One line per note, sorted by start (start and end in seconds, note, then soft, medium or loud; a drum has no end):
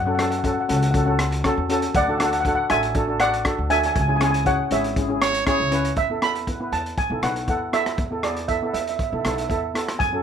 0.00 0.54 F#2 loud
0.06 0.14 C#4 medium
0.06 0.14 F#4 medium
0.06 0.14 A4 medium
0.06 0.13 F#5 medium
0.15 0.34 C#4 medium
0.15 0.21 F#5 medium
0.19 0.34 F#4 medium
0.19 0.35 A4 medium
0.19 cross-stick medium
0.19 closed hi-hat medium
0.31 0.37 F#5 medium
0.31 closed hi-hat medium
0.39 0.44 F#5 medium
0.43 0.59 C#4 medium
0.43 0.59 F#4 medium
0.43 0.60 A4 medium
0.43 0.52 F#5 medium
0.43 kick medium
0.43 closed hi-hat medium
0.53 0.59 F#5 medium
0.60 0.67 F#5 medium
0.69 1.40 C#2 medium
0.69 0.84 C#4 medium
0.69 0.85 F#4 medium
0.69 0.85 A4 medium
0.69 0.75 F#5 soft
0.69 closed hi-hat medium
0.76 0.82 F#5 medium
0.82 0.90 F#5 medium
0.82 closed hi-hat medium
0.91 1.02 C#4 medium
0.91 1.02 F#4 medium
0.91 0.97 F#5 medium
0.91 kick loud
0.91 closed hi-hat medium
0.95 1.02 A4 medium
0.95 1.05 F#5 medium
1.06 1.29 C#4 medium
1.06 1.30 F#4 medium
1.06 1.30 A4 medium
1.06 1.12 F#5 medium
1.19 cross-stick medium
1.19 closed hi-hat medium
1.32 closed hi-hat medium
1.44 1.60 C#4 medium
1.44 1.60 F#4 medium
1.44 1.61 A4 loud
1.44 kick medium
1.44 cross-stick medium
1.44 closed hi-hat medium
1.57 1.87 E2 medium
1.69 1.92 C#4 medium
1.69 1.93 F#4 medium
1.69 1.93 A4 loud
1.69 closed hi-hat medium
1.82 closed hi-hat medium
1.94 2.55 D2 medium
1.94 2.03 D5 medium
1.94 2.02 F#5 loud
1.94 kick loud
1.94 closed hi-hat medium
2.03 2.09 F#5 medium
2.08 2.15 D4 medium
2.08 2.16 F#4 medium
2.08 2.16 A4 medium
2.08 2.17 F#5 medium
2.18 2.35 D4 medium
2.18 2.36 F#4 medium
2.18 2.36 A4 medium
2.18 2.24 F#5 medium
2.18 cross-stick medium
2.18 closed hi-hat medium
2.25 2.32 F#5 medium
2.33 2.39 F#5 medium
2.33 closed hi-hat medium
2.40 2.47 F#5 medium
2.45 2.61 D4 medium
2.45 2.61 F#4 medium
2.45 2.62 A4 medium
2.45 2.54 F#5 medium
2.45 kick medium
2.45 closed hi-hat medium
2.55 2.62 F#5 medium
2.70 3.41 A1 medium
2.70 2.86 D4 medium
2.70 2.86 F#4 medium
2.70 2.87 A4 medium
2.70 3.17 E5 medium
2.70 3.22 G#5 loud
2.70 cross-stick medium
2.70 closed hi-hat medium
2.83 closed hi-hat medium
2.95 3.03 D4 medium
2.95 3.03 F#4 medium
2.95 3.04 A4 medium
2.95 kick loud
2.95 closed hi-hat medium
3.07 3.30 D4 medium
3.07 3.31 F#4 medium
3.07 3.31 A4 medium
3.20 3.68 D5 medium
3.20 3.72 F#5 loud
3.20 cross-stick medium
3.20 closed hi-hat medium
3.34 closed hi-hat medium
3.45 3.61 D4 medium
3.45 3.61 F#4 medium
3.45 3.61 A4 medium
3.45 kick medium
3.45 cross-stick medium
3.45 closed hi-hat medium
3.58 3.88 D2 medium
3.70 3.93 D4 medium
3.70 3.94 F#4 medium
3.70 3.94 A4 medium
3.70 3.78 E5 medium
3.70 3.78 G#5 loud
3.70 closed hi-hat medium
3.79 3.85 G#5 medium
3.83 3.92 G#5 medium
3.83 closed hi-hat medium
3.94 4.56 C#2 medium
3.94 4.00 G#5 medium
3.94 kick loud
3.94 closed hi-hat medium
4.01 4.08 G#5 medium
4.08 4.16 C#4 medium
4.08 4.16 E4 medium
4.08 4.16 G#4 medium
4.08 4.15 G#5 medium
4.16 4.36 C#4 medium
4.16 4.23 G#5 medium
4.21 4.36 E4 medium
4.21 4.37 G#4 medium
4.21 4.30 G#5 medium
4.21 cross-stick medium
4.21 closed hi-hat medium
4.31 4.38 G#5 medium
4.31 closed hi-hat medium
4.45 4.61 C#4 medium
4.45 4.61 E4 medium
4.45 4.62 G#4 medium
4.45 4.70 C#5 medium
4.45 4.72 F#5 medium
4.45 kick medium
4.45 closed hi-hat medium
4.71 5.42 G#1 medium
4.71 4.87 C#4 medium
4.71 4.87 E4 medium
4.71 4.87 G#4 medium
4.71 5.68 C#5 medium
4.71 5.69 E5 medium
4.71 closed hi-hat medium
4.84 closed hi-hat medium
4.96 5.04 C#4 medium
4.96 5.05 E4 medium
4.96 5.05 G#4 medium
4.96 kick loud
4.96 closed hi-hat medium
5.08 5.32 C#4 medium
5.08 5.32 E4 medium
5.08 5.32 G#4 medium
5.22 5.45 C#5 loud
5.22 cross-stick medium
5.22 closed hi-hat medium
5.34 closed hi-hat medium
5.46 5.62 C#4 medium
5.46 5.62 E4 medium
5.46 5.62 G#4 loud
5.46 5.94 C#5 loud
5.46 kick medium
5.46 cross-stick medium
5.46 closed hi-hat medium
5.60 5.90 C#2 medium
5.72 5.95 C#4 medium
5.72 5.95 E4 medium
5.72 5.95 B4 medium
5.72 closed hi-hat medium
5.85 closed hi-hat medium
5.96 6.57 E2 medium
5.96 6.09 E5 medium
5.96 kick loud
5.96 closed hi-hat medium
6.10 6.17 B3 medium
6.10 6.18 E4 medium
6.10 6.18 A4 medium
6.22 6.38 B3 medium
6.22 6.38 E4 medium
6.22 6.38 A4 medium
6.22 6.74 B5 medium
6.22 cross-stick medium
6.22 closed hi-hat medium
6.35 closed hi-hat medium
6.47 6.55 B3 medium
6.47 6.56 E4 medium
6.47 6.56 B4 medium
6.47 kick medium
6.47 closed hi-hat medium
6.60 6.90 B3 medium
6.60 6.91 E4 medium
6.60 6.91 B4 medium
6.72 6.92 E2 medium
6.72 6.96 A5 medium
6.72 closed hi-hat medium
6.86 closed hi-hat medium
6.98 7.21 G#5 medium
6.98 kick loud
6.98 closed hi-hat medium
7.10 7.20 B1 medium
7.10 7.18 B3 medium
7.10 7.18 E4 medium
7.10 7.19 A4 medium
7.22 7.43 B1 medium
7.22 7.38 B3 medium
7.22 7.38 E4 medium
7.22 7.39 B4 medium
7.22 7.47 F#5 medium
7.22 cross-stick medium
7.22 closed hi-hat medium
7.36 closed hi-hat medium
7.48 7.88 E2 medium
7.48 7.63 B3 medium
7.48 7.64 E4 medium
7.48 7.64 A4 medium
7.48 7.75 F#5 medium
7.48 kick medium
7.48 closed hi-hat medium
7.73 7.96 B3 medium
7.73 7.96 E4 medium
7.73 7.96 A4 medium
7.73 8.20 E5 medium
7.73 cross-stick medium
7.73 closed hi-hat medium
7.86 cross-stick medium
7.86 closed hi-hat medium
7.98 8.59 E2 medium
7.98 kick loud
7.98 closed hi-hat medium
8.10 8.18 B3 medium
8.10 8.19 E4 medium
8.10 8.19 A4 medium
8.23 8.39 B3 medium
8.23 8.39 E4 medium
8.23 8.39 G#4 medium
8.23 8.47 D5 medium
8.23 cross-stick medium
8.23 closed hi-hat medium
8.36 closed hi-hat medium
8.48 8.57 B3 medium
8.48 8.57 E4 medium
8.48 8.57 A4 medium
8.48 8.72 E5 medium
8.48 kick medium
8.48 closed hi-hat medium
8.62 8.92 B3 medium
8.62 8.93 E4 medium
8.62 8.93 A4 medium
8.73 8.94 E2 medium
8.73 8.80 E5 medium
8.73 closed hi-hat medium
8.81 8.88 E5 soft
8.87 8.95 E5 medium
8.87 closed hi-hat medium
8.96 9.02 E5 soft
8.96 kick medium
8.96 closed hi-hat medium
9.03 9.09 E5 medium
9.11 9.22 B1 medium
9.11 9.20 B3 medium
9.11 9.20 E4 medium
9.11 9.20 A4 medium
9.11 9.18 E5 soft
9.19 9.25 E5 soft
9.25 9.45 B1 medium
9.25 9.40 B3 medium
9.25 9.41 E4 medium
9.25 9.41 A4 medium
9.25 9.32 E5 soft
9.25 cross-stick medium
9.25 closed hi-hat medium
9.34 9.40 E5 medium
9.38 9.48 E5 soft
9.38 closed hi-hat medium
9.49 9.90 E2 medium
9.49 9.65 B3 medium
9.49 9.65 E4 medium
9.49 9.66 A4 medium
9.49 9.56 E5 medium
9.49 kick medium
9.49 closed hi-hat medium
9.57 9.65 E5 medium
9.74 9.97 B3 medium
9.74 9.98 E4 medium
9.74 9.98 A4 medium
9.74 cross-stick medium
9.74 closed hi-hat medium
9.88 cross-stick medium
9.88 closed hi-hat medium
9.99 10.23 F#2 medium
9.99 10.23 G#5 loud
9.99 kick loud
9.99 closed hi-hat medium
10.13 10.20 C#4 medium
10.13 10.20 F#4 medium
10.13 10.21 A4 medium